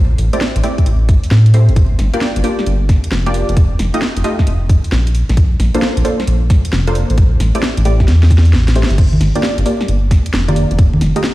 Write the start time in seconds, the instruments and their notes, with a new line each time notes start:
Already playing: analog synth bass A1
0.18 analog synth bass A1, open hi-hat
0.33 synth stab A3 C4 E4 G4 D5, closed hi-hat
0.41 snare
0.56 analog synth bass A1, closed hi-hat
0.64 synth stab A3 C4 E4 G4 D5, open hi-hat
0.78 kick, closed hi-hat
0.86 analog synth bass A1, closed hi-hat
1.09 kick, open hi-hat
1.23 open hi-hat
1.31 analog synth bass A2, snare
1.46 closed hi-hat
1.54 synth stab A3 C4 E4 G4 C5, open hi-hat
1.69 analog synth bass G1, closed hi-hat
1.76 kick, closed hi-hat
1.99 analog synth bass G1, snare, open hi-hat
2.14 synth stab A#3 D4 F4 G4 D5, closed hi-hat
2.21 snare
2.36 analog synth bass G1, closed hi-hat
2.44 synth stab A#3 D4 F4 G4 D5, open hi-hat
2.59 snare
2.66 analog synth bass G1, closed hi-hat
2.89 kick, snare, open hi-hat
3.04 closed hi-hat
3.12 analog synth bass F1, snare
3.26 synth stab A#3 D4 F4 G4 D5, closed hi-hat
3.34 open hi-hat
3.49 analog synth bass F1, closed hi-hat
3.57 kick, closed hi-hat
3.79 analog synth bass F1, snare, open hi-hat
3.94 synth stab A3 D#4 F4 G4 D#5, closed hi-hat
4.02 snare
4.17 analog synth bass F1, closed hi-hat
4.24 synth stab A3 D#4 F4 G4 D#5, open hi-hat
4.39 kick, snare
4.47 analog synth bass F1, closed hi-hat
4.69 kick, open hi-hat
4.84 open hi-hat
4.92 analog synth bass A#1, snare
5.07 closed hi-hat
5.15 open hi-hat
5.29 analog synth bass A#1, snare, closed hi-hat
5.37 kick, closed hi-hat
5.60 analog synth bass A#1, snare, open hi-hat
5.75 synth stab A#3 D4 F4 A4 C5, closed hi-hat
5.82 snare
5.97 analog synth bass A#1, closed hi-hat
6.05 synth stab A#3 D4 F4 A4 C5, open hi-hat
6.20 snare
6.27 analog synth bass A#1, closed hi-hat
6.50 kick, snare, open hi-hat
6.65 closed hi-hat
6.73 analog synth bass F1, snare
6.87 synth stab A#3 D4 F4 A4 C5, closed hi-hat
6.95 open hi-hat
7.10 analog synth bass A1, closed hi-hat
7.18 kick, closed hi-hat
7.40 analog synth bass A1, snare, open hi-hat
7.55 synth stab A3 C4 E4 G4 D5, closed hi-hat
7.63 snare
7.78 analog synth bass A1, closed hi-hat
7.85 synth stab A3 C4 E4 G4 D5, open hi-hat
8.00 kick, snare
8.08 analog synth bass E2, snare, closed hi-hat
8.23 snare
8.30 kick, open hi-hat
8.38 snare
8.45 open hi-hat
8.53 analog synth bass A1, snare
8.68 snare, closed hi-hat
8.76 synth stab A3 C4 E4 G4 C5, open hi-hat
8.83 snare
8.90 analog synth bass G1, closed hi-hat
8.98 kick, closed hi-hat, crash
9.13 high conga
9.21 analog synth bass G1, snare, open hi-hat
9.36 synth stab A#3 D4 F4 G4 D5, closed hi-hat
9.43 snare
9.58 analog synth bass G1, closed hi-hat
9.66 synth stab A#3 D4 F4 G4 D5, open hi-hat
9.81 snare
9.88 analog synth bass G1, closed hi-hat
10.11 kick, snare, open hi-hat
10.26 closed hi-hat
10.33 analog synth bass F1, snare
10.48 synth stab A#3 D4 F4 G4 D5, closed hi-hat, high conga
10.56 open hi-hat
10.71 analog synth bass F1, closed hi-hat
10.79 kick, closed hi-hat
10.94 high conga
11.01 analog synth bass F1, snare, open hi-hat
11.16 synth stab A3 D#4 F4 G4 D#5, closed hi-hat
11.24 snare